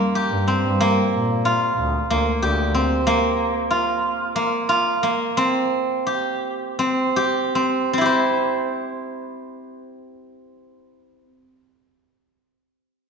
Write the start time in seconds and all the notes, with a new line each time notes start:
Already playing: A#3 C#4 F4 G#4
0.15 G4
0.31 G2
0.48 C4
0.64 G2
0.80 A#3
1.13 A#2
1.45 F4
1.78 D2
2.10 D2 A#3
2.42 D2 G4
2.74 C4
3.07 A#3
3.71 F4
4.36 A#3
4.69 F4
5.03 A#3
5.37 C4
6.07 G4
6.79 C4
7.16 G4
7.55 C4
7.93 C4
7.98 E4 G4
8.06 C5